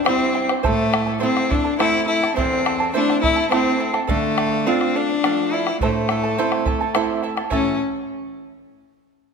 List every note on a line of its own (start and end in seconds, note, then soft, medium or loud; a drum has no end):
0.05 0.53 G3 soft
0.05 0.47 C4 medium
0.05 0.54 C4 soft
0.05 0.33 E4 medium
0.05 0.34 G4 medium
0.05 0.34 C5 medium
0.05 0.32 E5 medium
0.05 0.34 G5 medium
0.05 bombo rim medium
0.09 0.54 E4 soft
0.33 0.49 E4 soft
0.33 0.50 C5 medium
0.33 0.49 E5 soft
0.33 0.49 G5 medium
0.33 bombo rim soft
0.49 0.63 E4 soft
0.49 0.62 C5 medium
0.49 0.64 G5 soft
0.49 bombo rim medium
0.63 1.21 A2 medium
0.63 1.18 A3 medium
0.63 0.91 E4 medium
0.63 0.92 A4 medium
0.63 0.93 C5 medium
0.63 0.90 E5 medium
0.63 0.92 A5 medium
0.63 bombo low medium
0.79 bombo rim soft
0.92 1.06 E4 medium
0.92 1.06 A4 medium
0.92 1.07 E5 medium
0.92 1.05 A5 medium
0.92 bombo rim medium
1.06 1.19 E4 soft
1.06 1.19 A4 soft
1.06 1.20 A5 soft
1.06 bombo rim soft
1.20 1.68 A3 medium
1.20 1.52 C4 medium
1.20 1.69 C4 soft
1.20 1.49 E4 medium
1.20 1.69 E4 medium
1.20 1.49 A4 medium
1.20 1.50 C5 medium
1.20 1.48 E5 medium
1.20 1.49 A5 medium
1.37 bombo rim medium
1.49 1.78 D4 medium
1.49 1.64 E4 soft
1.49 1.64 A4 medium
1.49 1.64 E5 medium
1.49 1.63 A5 medium
1.49 bombo low medium
1.64 1.79 E4 soft
1.64 1.78 A4 soft
1.64 1.79 A5 soft
1.79 2.26 A3 soft
1.79 2.26 C4 soft
1.79 2.06 E4 medium
1.79 2.07 E4 medium
1.79 2.26 E4 medium
1.79 2.07 A4 medium
1.79 2.08 C5 medium
1.79 2.06 E5 medium
1.79 2.07 A5 medium
1.79 bombo rim medium
1.95 bombo rim soft
2.08 2.35 E4 medium
2.08 2.22 E4 medium
2.08 2.22 A4 soft
2.08 2.22 E5 soft
2.08 2.21 A5 medium
2.22 2.36 E4 soft
2.22 2.36 A4 soft
2.22 2.36 A5 soft
2.22 bombo rim soft
2.36 2.93 E2 medium
2.36 2.90 C4 medium
2.36 2.64 E4 medium
2.36 2.64 A4 medium
2.36 2.65 C5 medium
2.36 2.64 E5 medium
2.36 2.65 A5 medium
2.36 bombo low medium
2.53 bombo rim soft
2.65 2.80 E4 medium
2.65 2.79 A4 medium
2.65 2.80 E5 medium
2.65 2.79 A5 medium
2.65 bombo rim medium
2.80 2.93 E4 soft
2.80 2.93 A4 soft
2.80 2.94 A5 medium
2.80 bombo rim soft
2.94 3.41 A3 medium
2.94 3.41 C4 soft
2.94 3.21 D4 medium
2.94 3.21 E4 medium
2.94 3.41 E4 medium
2.94 3.21 A4 medium
2.94 3.23 C5 medium
2.94 3.20 E5 medium
2.94 3.22 A5 medium
3.10 bombo rim soft
3.21 3.36 E4 soft
3.21 3.49 E4 medium
3.21 3.36 A4 soft
3.21 3.37 E5 medium
3.21 3.35 A5 medium
3.21 bombo low medium
3.36 3.50 E4 soft
3.36 3.50 A4 soft
3.36 3.51 A5 medium
3.50 3.98 A3 soft
3.50 3.92 C4 medium
3.50 3.98 C4 soft
3.50 3.79 E4 medium
3.50 3.98 E4 soft
3.50 3.79 A4 medium
3.50 3.80 C5 medium
3.50 3.78 E5 medium
3.50 3.79 A5 medium
3.50 bombo rim medium
3.67 bombo rim soft
3.79 3.94 E4 medium
3.79 3.93 A4 medium
3.79 3.94 E5 soft
3.79 3.92 A5 medium
3.93 4.07 E4 soft
3.93 4.06 A4 medium
3.93 4.08 A5 soft
3.93 bombo rim soft
4.07 4.65 D3 medium
4.07 4.68 A3 medium
4.07 4.36 A4 medium
4.07 4.37 D5 medium
4.07 4.37 F5 medium
4.07 bombo low medium
4.24 bombo rim soft
4.37 4.52 A4 medium
4.37 4.52 D5 medium
4.37 4.51 F5 medium
4.37 bombo rim medium
4.52 4.65 D5 soft
4.52 4.66 F5 medium
4.52 bombo rim soft
4.66 5.12 A3 medium
4.66 4.97 C4 medium
4.66 5.12 D4 soft
4.66 5.13 F4 medium
4.66 4.94 A4 medium
4.66 4.95 D5 medium
4.66 4.95 F5 medium
4.81 bombo rim soft
4.95 5.54 D4 medium
4.95 5.09 A4 soft
4.95 5.10 D5 medium
4.95 5.09 F5 medium
5.10 5.24 D5 soft
5.10 5.24 F5 soft
5.23 5.70 F3 soft
5.23 5.69 A3 soft
5.23 5.69 D4 soft
5.23 5.52 A4 medium
5.23 5.53 D5 medium
5.23 5.53 F5 medium
5.23 bombo rim medium
5.39 bombo rim soft
5.52 5.81 E4 medium
5.52 5.67 A4 medium
5.52 5.67 D5 medium
5.52 5.67 F5 medium
5.67 5.82 D5 soft
5.67 5.81 F5 soft
5.67 bombo rim medium
5.81 6.36 A2 medium
5.81 6.91 A3 medium
5.81 6.09 E4 medium
5.81 6.10 A4 medium
5.81 6.10 C5 medium
5.81 6.09 E5 medium
5.81 6.10 A5 medium
5.81 bombo low medium
6.09 6.24 E4 medium
6.09 6.24 A4 medium
6.09 6.23 E5 medium
6.09 6.22 A5 medium
6.09 bombo rim medium
6.24 6.37 E4 soft
6.24 6.38 A4 soft
6.24 6.38 A5 medium
6.38 6.83 A3 medium
6.38 6.84 C4 soft
6.38 6.65 E4 medium
6.38 6.84 E4 medium
6.38 6.66 A4 medium
6.38 6.66 C5 medium
6.38 6.64 E5 medium
6.38 6.66 A5 medium
6.38 bombo rim soft
6.52 bombo rim medium
6.66 6.80 E4 medium
6.66 6.80 A4 medium
6.66 6.80 E5 medium
6.66 6.80 A5 medium
6.66 bombo low medium
6.81 6.93 E4 soft
6.81 6.94 A4 soft
6.81 6.94 A5 soft
6.94 7.40 A3 soft
6.94 7.40 C4 soft
6.94 7.22 E4 medium
6.94 7.41 E4 soft
6.94 7.23 A4 medium
6.94 7.23 C5 medium
6.94 7.22 E5 medium
6.94 7.23 A5 medium
6.94 bombo rim medium
7.23 7.37 E4 medium
7.23 7.36 A4 soft
7.23 7.37 E5 medium
7.23 7.36 A5 medium
7.23 bombo rim soft
7.37 7.50 E4 soft
7.37 7.51 A4 medium
7.37 7.51 A5 medium
7.37 bombo rim medium
7.50 7.78 A2 soft
7.50 7.78 E3 soft
7.50 7.79 A3 medium
7.50 7.78 C#4 medium
7.50 7.74 E4 medium
7.50 7.74 A4 medium
7.50 7.73 C#5 medium
7.50 7.74 E5 medium
7.50 7.74 A5 medium
7.50 bombo low medium